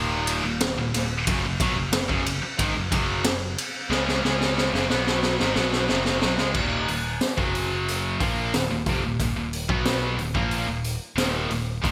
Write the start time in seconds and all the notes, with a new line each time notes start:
Already playing: D#1 D#2 A#2 D#3
0.27 ride
0.44 D#1 D#2 A#2
0.61 snare, ride
0.77 D#1 D#2 A#2
0.94 D#1 D#2 A#2, snare, ride
1.27 F#1 F#2 C#3, kick, ride
1.44 F#1 F#2 C#3
1.60 B1 B2 F#3, kick, ride
1.75 F#1 F#2 C#3
1.92 F#1 F#2 C#3, snare, ride
2.08 F#1 F#2 C#3, kick
2.26 F#1 F#2 C#3, ride
2.42 muted distorted electric guitar stroke, muted picked electric bass stroke, muted overdriven electric guitar stroke
2.58 G#1 G#2 D#3, kick, ride
2.75 F#1 F#2 C#3
2.91 F#1 F#2 C#3 F#3, kick, ride
3.24 F#1 F#2 C#3, snare, ride
3.58 ride
3.90 C#2 C#3 G#3 C#4, snare
4.08 snare
4.24 C#2 C#3 G#3 C#4, snare
4.41 snare
4.58 snare
4.72 F#1 F#2 C#3, snare
4.90 B1 B2 F#3 B3, snare
5.07 snare
5.23 snare
5.39 G#1 G#2 D#3, snare
5.54 B1 B2 F#3 B3, snare
5.73 snare
5.88 F#1 F#2 C#3 F#3, snare
6.05 snare
6.21 B1 B2 F#3, snare
6.38 C#2 C#3 G#3, snare
6.54 D#1 D#2 A#2 D#3, kick, crash
6.88 D#1 D#2 A#2, open hi-hat
7.21 snare, open hi-hat
7.37 F#1 F#2 C#3 F#3, kick
7.55 open hi-hat
7.88 open hi-hat
8.20 A#1 A#2 F3 A#3, kick, open hi-hat
8.54 D#1 D#2 A#2, snare, open hi-hat
8.70 D#1 D#2 A#2
8.86 F1 F2 C3, kick, open hi-hat
9.04 D#1 D#2 A#2
9.20 D#1 D#2 A#2, kick, open hi-hat
9.36 D#1 D#2 A#2
9.53 open hi-hat
9.69 B1 B2 F#3 B3, kick
9.85 snare, open hi-hat
10.17 D#1 D#2 A#2, open hi-hat
10.34 A#1 A#2 F3 A#3, kick
10.51 open hi-hat
10.66 D#1 D#2 A#2
10.84 open hi-hat
11.16 D#1 D#2 A#2 D#3, snare, open hi-hat
11.49 D#1 D#2 A#2, open hi-hat
11.83 D#1 D#2 A#2 D#3, kick, open hi-hat